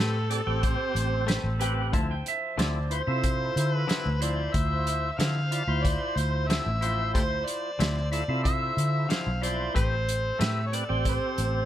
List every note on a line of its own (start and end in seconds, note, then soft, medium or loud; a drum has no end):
0.00 0.40 A2 medium
0.00 0.17 A3 medium
0.00 0.18 C4 medium
0.00 1.90 C4 medium
0.00 0.18 G4 medium
0.00 1.89 G4 medium
0.00 0.30 A4 medium
0.00 1.90 A4 medium
0.00 0.18 B4 medium
0.29 0.41 C4 medium
0.29 0.42 G4 medium
0.29 0.65 A4 medium
0.29 0.42 D5 medium
0.29 closed hi-hat medium
0.46 0.75 A1 medium
0.46 1.24 C4 medium
0.46 1.25 G4 medium
0.46 1.25 C5 medium
0.63 1.61 C5 medium
0.63 kick medium
0.63 closed hi-hat medium
0.95 1.37 A1 medium
0.95 closed hi-hat medium
1.27 1.47 A3 medium
1.27 1.48 C4 medium
1.27 1.48 G4 medium
1.27 1.48 B4 medium
1.27 snare loud
1.27 closed hi-hat medium
1.44 1.93 A1 medium
1.59 1.93 C4 medium
1.59 1.81 C4 soft
1.59 1.93 G4 medium
1.59 1.81 G4 soft
1.59 1.80 B4 soft
1.59 1.93 B4 medium
1.59 1.93 G5 medium
1.59 closed hi-hat medium
1.93 2.21 D2 loud
1.93 2.13 D3 medium
1.93 2.13 F3 medium
1.93 9.71 F3 medium
1.93 2.13 C4 medium
1.93 2.13 E4 medium
1.93 9.71 C5 medium
1.93 2.10 A5 medium
1.93 kick loud
1.93 closed hi-hat medium
2.11 2.26 G5 medium
2.26 2.59 E5 medium
2.26 closed hi-hat medium
2.58 3.00 D2 medium
2.58 2.78 D3 medium
2.58 2.78 F3 medium
2.58 2.78 C4 medium
2.58 2.79 E4 loud
2.58 2.91 D5 medium
2.58 snare loud
2.58 closed hi-hat medium
2.90 3.02 E4 medium
2.90 3.03 F4 medium
2.90 3.03 C5 medium
2.90 3.74 C5 medium
2.90 closed hi-hat medium
3.07 3.49 C3 medium
3.07 3.85 E4 medium
3.07 3.85 F4 medium
3.07 3.86 A4 medium
3.24 kick medium
3.24 closed hi-hat medium
3.56 3.84 D3 medium
3.56 closed hi-hat medium
3.74 4.18 B4 medium
3.87 4.08 D3 medium
3.87 4.08 F3 medium
3.87 4.09 C4 medium
3.87 4.09 E4 medium
3.87 snare loud
3.87 closed hi-hat medium
4.06 4.47 D2 medium
4.21 4.42 F3 soft
4.21 4.41 C4 soft
4.21 4.41 E4 soft
4.21 5.11 E4 medium
4.21 5.11 F4 medium
4.21 5.11 C5 medium
4.21 4.55 D5 medium
4.21 closed hi-hat medium
4.53 5.10 D2 medium
4.53 5.12 E5 loud
4.53 kick loud
4.53 closed hi-hat medium
4.87 closed hi-hat medium
5.12 5.20 E5 medium
5.18 5.39 D3 medium
5.18 5.61 D3 medium
5.18 5.39 F3 medium
5.18 5.39 C4 medium
5.18 5.40 E4 medium
5.18 5.85 F5 loud
5.18 snare loud
5.18 closed hi-hat medium
5.51 5.63 E4 medium
5.51 5.63 F4 medium
5.51 5.63 D5 medium
5.51 closed hi-hat medium
5.68 5.96 D2 medium
5.68 6.46 E4 medium
5.68 6.46 F4 medium
5.68 6.47 C5 medium
5.83 6.19 D5 loud
5.83 kick medium
5.83 closed hi-hat medium
6.16 6.58 D2 medium
6.16 6.50 C5 medium
6.16 closed hi-hat medium
6.48 6.69 D3 medium
6.48 6.69 F3 medium
6.48 6.70 C4 medium
6.48 6.70 E4 medium
6.48 7.14 E5 loud
6.48 snare loud
6.48 closed hi-hat medium
6.66 7.15 A1 medium
6.81 7.03 F3 soft
6.81 7.02 C4 soft
6.81 7.01 E4 soft
6.81 7.71 E4 medium
6.81 7.71 F4 medium
6.81 7.72 C5 medium
6.81 closed hi-hat medium
7.14 7.43 D2 loud
7.14 7.22 G4 medium
7.14 7.22 A4 medium
7.14 7.47 C5 loud
7.14 kick loud
7.14 closed hi-hat medium
7.46 8.10 D5 medium
7.46 closed hi-hat medium
7.79 8.22 D2 medium
7.79 7.99 D3 medium
7.79 8.00 F3 medium
7.79 8.00 C4 medium
7.79 8.00 E4 medium
7.79 snare loud
7.79 closed hi-hat medium
8.11 8.23 E4 medium
8.11 8.24 F4 medium
8.11 8.24 A4 medium
8.11 8.42 D5 medium
8.11 closed hi-hat medium
8.28 8.70 C3 medium
8.28 9.07 E4 medium
8.28 9.07 F4 medium
8.28 9.07 A4 medium
8.44 9.11 E5 loud
8.44 kick medium
8.44 closed hi-hat medium
8.77 9.05 D3 medium
8.77 closed hi-hat medium
9.09 9.29 D3 medium
9.09 9.30 F3 medium
9.09 9.30 C4 medium
9.09 9.30 E4 medium
9.09 9.44 F5 medium
9.09 snare loud
9.09 closed hi-hat medium
9.27 9.68 B1 medium
9.42 9.64 F3 soft
9.42 9.63 C4 soft
9.42 9.75 E4 medium
9.42 9.62 E4 soft
9.42 9.75 F4 medium
9.42 9.75 C5 medium
9.42 9.75 D5 medium
9.42 closed hi-hat medium
9.74 10.31 A1 medium
9.74 9.95 A3 medium
9.74 9.95 C4 medium
9.74 11.65 C4 medium
9.74 9.95 G4 medium
9.74 11.65 G4 medium
9.74 11.65 A4 medium
9.74 9.95 B4 medium
9.74 10.41 C5 loud
9.74 kick loud
9.74 closed hi-hat medium
10.09 closed hi-hat medium
10.39 10.82 A2 medium
10.39 10.59 A3 medium
10.39 10.60 C4 medium
10.39 10.60 G4 medium
10.39 10.61 B4 medium
10.39 10.68 E5 medium
10.39 snare loud
10.39 closed hi-hat medium
10.67 10.77 C#5 medium
10.72 10.84 C4 medium
10.72 10.84 G4 medium
10.72 10.85 B4 medium
10.72 11.07 D5 medium
10.72 closed hi-hat medium
10.89 11.17 A1 medium
10.89 11.65 C4 medium
10.89 11.65 G4 medium
10.89 11.65 C5 medium
11.05 11.65 C5 medium
11.05 kick medium
11.05 closed hi-hat medium
11.38 11.65 A1 medium
11.38 closed hi-hat medium